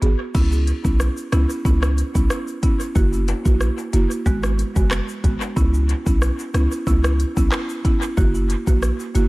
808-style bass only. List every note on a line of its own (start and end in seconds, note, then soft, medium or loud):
0.02 0.15 G#1 loud
0.35 0.72 C#2 loud
0.85 1.09 B1 medium
1.33 1.46 C#2 loud
1.65 2.03 C#2 loud
2.15 2.27 B1 medium
2.96 3.33 F#1 loud
3.45 3.70 A#1 medium
3.93 4.06 F#1 medium
4.26 4.63 G#1 loud
4.76 5.01 F#1 medium
5.24 5.37 G#1 loud
5.57 5.94 C#2 loud
6.07 6.31 B1 medium
6.54 6.67 C#2 loud
6.87 7.24 C#2 loud
7.37 7.48 B1 medium
8.17 8.55 F#1 loud
8.67 8.92 A#1 medium
9.15 9.28 F#1 loud